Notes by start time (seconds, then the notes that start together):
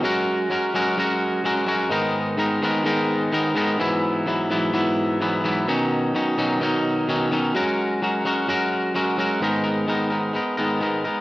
0.03 F#3 G#3 C#4 F#4 A#4
0.50 F#3 G#3 C#4 F#4 A#4
0.74 F#3 G#3 C#4 F#4 A#4
0.97 F#3 G#3 C#4 F#4 A#4
1.44 F#3 G#3 C#4 F#4 A#4
1.66 F#3 G#3 C#4 F#4 A#4
1.90 G#2 D#3 G#3 B3 D#4 A#4
2.37 G#2 D#3 G#3 B3 D#4 A#4
2.62 G#2 D#3 G#3 B3 D#4 A#4
2.84 G#2 D#3 G#3 B3 D#4 A#4
3.32 G#2 D#3 G#3 B3 D#4 A#4
3.55 G#2 D#3 G#3 B3 D#4 A#4
3.79 G#2 E3 F#3 B3 E4
4.26 G#2 E3 F#3 B3 E4
4.50 G#2 E3 F#3 B3 E4
4.73 G#2 E3 F#3 B3 E4
5.20 G#2 E3 F#3 B3 E4
5.44 G#2 E3 F#3 B3 E4
5.68 B2 D#3 F#3 C#4 D#4
6.14 B2 D#3 F#3 C#4 D#4
6.37 B2 D#3 F#3 C#4 D#4
6.60 B2 D#3 F#3 C#4 D#4
7.08 B2 D#3 F#3 C#4 D#4
7.31 B2 D#3 F#3 C#4 D#4
7.54 F#3 G#3 C#4 F#4 A#4
8.02 F#3 G#3 C#4 F#4 A#4
8.25 F#3 G#3 C#4 F#4 A#4
8.48 F#3 G#3 C#4 F#4 A#4
8.94 F#3 G#3 C#4 F#4 A#4
9.18 F#3 G#3 C#4 F#4 A#4
9.41 G#2 D#3 G#3 B3 D#4 A#4
9.64 G#3 B3 D#4 A#4
9.87 G#2 D#3 G#3 B3 D#4 A#4
10.10 G#3 B3 D#4 A#4
10.33 G#3 B3 D#4 A#4
10.57 G#2 D#3 G#3 B3 D#4 A#4
10.81 G#3 B3 D#4 A#4
11.04 G#3 B3 D#4 A#4